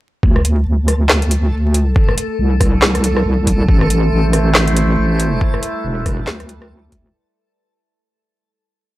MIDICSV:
0, 0, Header, 1, 5, 480
1, 0, Start_track
1, 0, Tempo, 431655
1, 258, Time_signature, 4, 2, 24, 8
1, 9976, End_track
2, 0, Start_track
2, 0, Title_t, "Synth drone"
2, 0, Program_c, 0, 95
2, 4098, Note_on_c, 0, 64, 79
2, 4099, Note_on_c, 0, 57, 86
2, 4099, Note_on_c, 0, 72, 96
2, 5999, Note_off_c, 0, 57, 0
2, 5999, Note_off_c, 0, 72, 0
2, 6020, Note_on_c, 0, 71, 93
2, 6021, Note_on_c, 0, 55, 86
2, 7899, Note_off_c, 0, 64, 0
2, 7920, Note_off_c, 0, 55, 0
2, 7920, Note_off_c, 0, 71, 0
2, 9976, End_track
3, 0, Start_track
3, 0, Title_t, "Synth texture"
3, 0, Program_c, 1, 99
3, 256, Note_on_c, 1, 57, 92
3, 258, Note_on_c, 1, 69, 91
3, 7948, Note_off_c, 1, 57, 0
3, 7949, Note_off_c, 1, 69, 0
3, 9976, End_track
4, 0, Start_track
4, 0, Title_t, "Wobble bass"
4, 0, Program_c, 2, 39
4, 258, Note_on_c, 2, 38, 99
4, 722, Note_off_c, 2, 38, 0
4, 738, Note_on_c, 2, 38, 100
4, 1682, Note_off_c, 2, 38, 0
4, 1698, Note_on_c, 2, 38, 98
4, 2162, Note_off_c, 2, 38, 0
4, 2657, Note_on_c, 2, 36, 95
4, 3121, Note_off_c, 2, 36, 0
4, 3136, Note_on_c, 2, 36, 97
4, 3601, Note_off_c, 2, 36, 0
4, 3618, Note_on_c, 2, 36, 98
4, 4082, Note_off_c, 2, 36, 0
4, 4097, Note_on_c, 2, 33, 98
4, 4562, Note_off_c, 2, 33, 0
4, 4579, Note_on_c, 2, 33, 99
4, 5522, Note_off_c, 2, 33, 0
4, 5538, Note_on_c, 2, 33, 99
4, 6002, Note_off_c, 2, 33, 0
4, 6496, Note_on_c, 2, 28, 94
4, 6961, Note_off_c, 2, 28, 0
4, 6978, Note_on_c, 2, 38, 94
4, 7922, Note_off_c, 2, 38, 0
4, 9976, End_track
5, 0, Start_track
5, 0, Title_t, "Drums"
5, 257, Note_on_c, 9, 36, 127
5, 368, Note_off_c, 9, 36, 0
5, 399, Note_on_c, 9, 37, 51
5, 499, Note_on_c, 9, 42, 82
5, 510, Note_off_c, 9, 37, 0
5, 610, Note_off_c, 9, 42, 0
5, 979, Note_on_c, 9, 37, 51
5, 979, Note_on_c, 9, 46, 90
5, 1090, Note_off_c, 9, 37, 0
5, 1090, Note_off_c, 9, 46, 0
5, 1217, Note_on_c, 9, 38, 115
5, 1217, Note_on_c, 9, 39, 93
5, 1329, Note_off_c, 9, 38, 0
5, 1329, Note_off_c, 9, 39, 0
5, 1359, Note_on_c, 9, 42, 38
5, 1457, Note_off_c, 9, 42, 0
5, 1457, Note_on_c, 9, 42, 84
5, 1568, Note_off_c, 9, 42, 0
5, 1939, Note_on_c, 9, 42, 85
5, 2050, Note_off_c, 9, 42, 0
5, 2178, Note_on_c, 9, 36, 127
5, 2289, Note_off_c, 9, 36, 0
5, 2319, Note_on_c, 9, 37, 52
5, 2420, Note_on_c, 9, 42, 84
5, 2430, Note_off_c, 9, 37, 0
5, 2531, Note_off_c, 9, 42, 0
5, 2898, Note_on_c, 9, 36, 112
5, 2899, Note_on_c, 9, 37, 54
5, 2899, Note_on_c, 9, 46, 91
5, 3009, Note_off_c, 9, 36, 0
5, 3010, Note_off_c, 9, 37, 0
5, 3010, Note_off_c, 9, 46, 0
5, 3139, Note_on_c, 9, 38, 120
5, 3139, Note_on_c, 9, 39, 93
5, 3250, Note_off_c, 9, 38, 0
5, 3250, Note_off_c, 9, 39, 0
5, 3281, Note_on_c, 9, 37, 50
5, 3281, Note_on_c, 9, 42, 37
5, 3379, Note_off_c, 9, 42, 0
5, 3379, Note_on_c, 9, 42, 81
5, 3392, Note_off_c, 9, 37, 0
5, 3490, Note_off_c, 9, 42, 0
5, 3520, Note_on_c, 9, 37, 61
5, 3631, Note_off_c, 9, 37, 0
5, 3858, Note_on_c, 9, 36, 68
5, 3860, Note_on_c, 9, 42, 86
5, 3969, Note_off_c, 9, 36, 0
5, 3971, Note_off_c, 9, 42, 0
5, 4097, Note_on_c, 9, 36, 127
5, 4209, Note_off_c, 9, 36, 0
5, 4239, Note_on_c, 9, 37, 54
5, 4339, Note_on_c, 9, 42, 79
5, 4350, Note_off_c, 9, 37, 0
5, 4451, Note_off_c, 9, 42, 0
5, 4818, Note_on_c, 9, 37, 52
5, 4818, Note_on_c, 9, 46, 92
5, 4930, Note_off_c, 9, 37, 0
5, 4930, Note_off_c, 9, 46, 0
5, 5059, Note_on_c, 9, 38, 123
5, 5059, Note_on_c, 9, 39, 91
5, 5170, Note_off_c, 9, 38, 0
5, 5170, Note_off_c, 9, 39, 0
5, 5199, Note_on_c, 9, 42, 36
5, 5299, Note_off_c, 9, 42, 0
5, 5299, Note_on_c, 9, 42, 82
5, 5410, Note_off_c, 9, 42, 0
5, 5777, Note_on_c, 9, 42, 81
5, 5888, Note_off_c, 9, 42, 0
5, 6018, Note_on_c, 9, 36, 126
5, 6129, Note_off_c, 9, 36, 0
5, 6158, Note_on_c, 9, 37, 54
5, 6257, Note_on_c, 9, 42, 81
5, 6269, Note_off_c, 9, 37, 0
5, 6368, Note_off_c, 9, 42, 0
5, 6738, Note_on_c, 9, 36, 113
5, 6738, Note_on_c, 9, 37, 56
5, 6738, Note_on_c, 9, 46, 92
5, 6849, Note_off_c, 9, 36, 0
5, 6849, Note_off_c, 9, 37, 0
5, 6849, Note_off_c, 9, 46, 0
5, 6977, Note_on_c, 9, 38, 127
5, 6977, Note_on_c, 9, 39, 88
5, 7088, Note_off_c, 9, 38, 0
5, 7088, Note_off_c, 9, 39, 0
5, 7118, Note_on_c, 9, 37, 55
5, 7118, Note_on_c, 9, 42, 35
5, 7217, Note_off_c, 9, 42, 0
5, 7217, Note_on_c, 9, 42, 80
5, 7229, Note_off_c, 9, 37, 0
5, 7329, Note_off_c, 9, 42, 0
5, 7358, Note_on_c, 9, 37, 66
5, 7469, Note_off_c, 9, 37, 0
5, 7697, Note_on_c, 9, 36, 65
5, 7697, Note_on_c, 9, 42, 79
5, 7808, Note_off_c, 9, 42, 0
5, 7809, Note_off_c, 9, 36, 0
5, 9976, End_track
0, 0, End_of_file